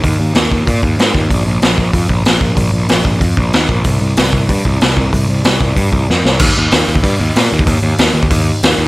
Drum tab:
CC |----------------|----------------|----------------|----------------|
HH |o---o---o---o---|o---o---o---o---|o---o---o---o---|o---o---o---o---|
SD |----o-------o---|----o-------o---|----o-------o---|----o-------o---|
BD |o-----o-o-o---o-|o-----o-o-o---o-|o-----o-o-o---o-|o-----o-o-o---o-|

CC |----------------|x---------------|----------------|
HH |o---o---o-------|----o---o---o---|o---o---o---o---|
SD |----o-------o-o-|----o-------o---|----o-------o---|
BD |o-----o-o-o-----|o------oo------o|o------oo-------|